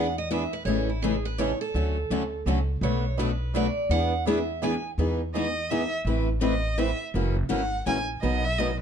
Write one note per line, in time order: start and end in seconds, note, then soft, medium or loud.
0.00 0.45 E2 medium
0.00 0.17 F#5 medium
0.18 0.31 D#5 medium
0.31 0.43 E3 medium
0.31 0.43 B3 medium
0.31 0.43 D4 medium
0.31 0.43 G#4 loud
0.31 0.43 B4 medium
0.31 0.53 E5 medium
0.53 0.65 B4 medium
0.65 1.52 A1 medium
0.65 0.88 C#3 medium
0.65 0.88 E3 medium
0.65 0.88 G#3 medium
0.65 0.88 A3 medium
0.65 0.89 C#4 medium
0.65 0.89 E4 medium
0.65 0.89 G#4 medium
0.65 0.89 A4 medium
0.65 0.88 C#5 medium
0.89 1.02 E4 soft
1.02 1.14 C#3 medium
1.02 1.14 E3 medium
1.02 1.14 G#3 medium
1.02 1.15 A3 loud
1.02 1.14 C#4 medium
1.02 1.15 E4 medium
1.02 1.24 G#4 medium
1.02 1.15 G#4 loud
1.02 1.15 A4 medium
1.25 1.38 B4 medium
1.38 1.50 C#3 medium
1.38 1.50 E3 medium
1.38 1.51 G#3 medium
1.38 1.50 A3 medium
1.38 1.51 C#4 medium
1.38 1.51 E4 loud
1.38 1.50 G#4 loud
1.38 1.51 A4 loud
1.38 1.60 C#5 loud
1.61 2.42 A4 medium
1.74 2.03 D2 loud
1.74 1.96 D3 medium
1.74 1.97 F#3 medium
1.74 1.96 A3 medium
1.74 1.96 C#4 medium
1.74 1.96 F#4 medium
1.74 1.96 A4 medium
2.10 2.41 D2 medium
2.10 2.22 D3 medium
2.10 2.22 F#3 loud
2.10 2.22 A3 medium
2.10 2.22 C#4 medium
2.10 2.22 F#4 medium
2.10 2.22 A4 medium
2.46 2.77 C#2 medium
2.46 2.58 D3 loud
2.46 2.59 F#3 medium
2.46 2.58 A3 medium
2.46 2.58 C#4 loud
2.46 2.58 F#4 loud
2.46 2.58 A4 loud
2.81 3.68 B1 loud
2.81 3.03 B2 medium
2.81 3.04 F#3 medium
2.81 3.04 A3 medium
2.81 3.04 D4 medium
2.81 3.04 F#4 medium
2.81 3.04 B4 medium
2.81 3.16 C#5 medium
3.17 3.29 B2 medium
3.17 3.29 F#3 medium
3.17 3.29 A3 loud
3.17 3.29 D4 medium
3.17 3.30 F#4 medium
3.17 3.29 B4 medium
3.17 3.52 B4 medium
3.54 3.65 B2 medium
3.54 3.66 F#3 medium
3.54 3.66 A3 medium
3.54 3.66 D4 loud
3.54 3.66 F#4 loud
3.54 3.66 B4 loud
3.54 3.90 D5 medium
3.90 4.76 E2 medium
3.90 4.12 E3 medium
3.90 4.12 B3 medium
3.90 4.12 D4 medium
3.90 4.12 G#4 medium
3.90 4.13 B4 medium
3.90 4.24 F#5 loud
4.25 4.37 E3 medium
4.25 4.37 B3 medium
4.25 4.38 D4 medium
4.25 4.38 G#4 medium
4.25 4.38 B4 loud
4.25 4.61 E5 medium
4.62 4.73 E3 medium
4.62 4.73 B3 medium
4.62 4.73 D4 loud
4.62 4.74 G#4 loud
4.62 4.74 B4 loud
4.62 4.90 G#5 medium
4.98 5.84 E2 medium
4.98 5.20 E3 medium
4.98 5.20 G#3 medium
4.98 5.20 B3 medium
4.98 5.20 D#4 medium
4.98 5.20 G#4 medium
5.34 5.45 E3 medium
5.34 5.45 G#3 medium
5.34 5.45 B3 medium
5.34 5.46 D#4 medium
5.34 5.46 G#4 medium
5.34 5.72 D#5 medium
5.71 5.82 E3 medium
5.71 5.81 G#3 medium
5.71 5.82 B3 medium
5.71 5.82 D#4 medium
5.71 5.82 G#4 medium
5.71 5.93 E5 medium
6.05 6.91 A1 medium
6.05 6.27 E3 medium
6.05 6.27 A3 medium
6.05 6.27 C4 medium
6.05 6.27 E4 medium
6.05 6.28 B4 medium
6.42 6.53 E3 medium
6.42 6.53 A3 medium
6.42 6.54 C4 medium
6.42 6.54 E4 medium
6.42 6.54 B4 medium
6.42 6.80 D#5 medium
6.78 6.89 E3 medium
6.78 6.89 A3 medium
6.78 6.89 C4 medium
6.78 6.89 E4 medium
6.78 6.89 B4 loud
6.78 7.01 E5 loud
7.14 7.43 F#1 medium
7.14 7.36 C#3 medium
7.14 7.36 E3 medium
7.14 7.35 F#3 medium
7.14 7.36 A#3 medium
7.14 7.35 C#4 medium
7.14 7.36 E4 medium
7.14 7.36 F#4 medium
7.14 7.36 A#4 medium
7.49 7.80 G#1 medium
7.49 7.61 C#3 loud
7.49 7.61 E3 loud
7.49 7.61 F#3 medium
7.49 7.61 A#3 loud
7.49 7.61 C#4 medium
7.49 7.62 E4 medium
7.49 7.61 F#4 loud
7.49 7.61 A#4 loud
7.49 7.84 F#5 medium
7.86 8.17 A#1 medium
7.86 7.97 C#3 medium
7.86 7.97 E3 medium
7.86 7.97 F#3 medium
7.86 7.97 A#3 loud
7.86 7.97 C#4 loud
7.86 7.98 E4 loud
7.86 7.98 F#4 medium
7.86 7.98 A#4 loud
7.86 8.00 G#5 medium
8.22 8.82 B1 loud
8.22 8.43 B2 medium
8.22 8.43 D#3 medium
8.22 8.43 F#3 medium
8.22 8.43 B3 medium
8.22 8.43 D#4 medium
8.22 8.44 F#4 medium
8.22 8.43 B4 medium
8.22 8.46 D#5 medium
8.45 8.60 E5 loud
8.59 8.70 B2 medium
8.59 8.70 D#3 medium
8.59 8.70 F#3 medium
8.59 8.70 B3 medium
8.59 8.70 D#4 medium
8.59 8.70 F#4 loud
8.59 8.70 B4 medium
8.59 8.80 D#5 medium